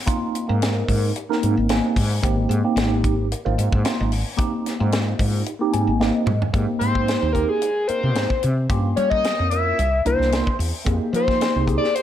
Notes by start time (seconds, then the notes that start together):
0.06 A#3 C4 D#4 F4, kick, closed hi-hat
0.35 closed hi-hat
0.48 G#2 A#3 C4 D#4 A#4
0.62 snare, closed hi-hat
0.88 G#2, kick, open hi-hat
1.15 D#4 G4, closed hi-hat
1.29 A#3 C4 D#4 A#4, snare
1.43 G#2, closed hi-hat
1.57 G#1
1.69 A#3 C4 D#4 G4 G#5, snare, closed hi-hat
1.96 G#2 D#4 G4, kick, open hi-hat
2.23 G#1 A#3 C4 D#4 G4, kick, closed hi-hat
2.49 G#2, closed hi-hat
2.64 A#3 C4 D#4 G4
2.76 G#1, snare, closed hi-hat
3.04 kick, closed hi-hat
3.31 D#4 A#4, closed hi-hat
3.45 G#1 A#3 C4 D#4 F4
3.58 G#2, closed hi-hat
3.72 G#2, kick
3.84 A#3 C4 D#4 F4, snare, closed hi-hat
4.00 G#1
4.11 D#4 G4, open hi-hat
4.37 A#3 C4 D#4 G4, kick, closed hi-hat
4.66 snare, closed hi-hat
4.79 G#2 A#3 C4 D#4 F4
4.92 snare, closed hi-hat
5.19 G#2, kick, open hi-hat
5.45 D#4 G4, closed hi-hat
5.59 A#3 C4 D#4 G4
5.73 G#2 G#5, closed hi-hat
5.87 G#1
6.00 A#3 C4 D#4 G4 D#5, snare
6.26 G#2 D#4 F4, mid tom
6.42 floor tom
6.53 G#2 A#3 C4 D#4 G4, kick, closed hi-hat
6.79 G#2 C5, closed hi-hat
6.94 A#3 C4 D#4 G4, kick
7.08 snare, closed hi-hat
7.22 D#2
7.33 A#3 C4 D#4 G4 A#4, kick, closed hi-hat
7.49 G#4
7.61 D#4 F4, closed hi-hat
7.88 A#3 C4 D#4 A#4 C5, muted fretless electric bass stroke, closed hi-hat
8.03 C3
8.15 G#2 A#3 C4 D#4 G#4, snare, closed hi-hat
8.30 D#4 A#4, kick
8.43 C3, closed hi-hat
8.69 G2 A#3 C#4 F4 G4, kick, closed hi-hat
8.96 G3 C#5, closed hi-hat
9.10 A#3 C#4 F4 A#4 D#5, kick
9.24 snare, closed hi-hat
9.39 F2
9.50 A#3 C#4 F4 A#4 E5, closed hi-hat
9.79 C2 E4, closed hi-hat
10.05 C2 A#3 D4 E4 A#4 C5, closed hi-hat
10.19 C2, snare
10.32 A#3 D4 E4 A#4, snare, closed hi-hat
10.46 E4 G4, kick
10.59 E2, open hi-hat
10.85 F2 A#3 D#4 G4 G#4, kick, closed hi-hat
11.13 F3 C5, closed hi-hat
11.27 A#3 D#4 G4 G#4, kick, snare
11.41 snare, closed hi-hat
11.56 C2
11.66 A#3 D#4 G4 G#4, kick, closed hi-hat
11.78 D5
11.84 snare
11.93 G4 A#4 C5, closed hi-hat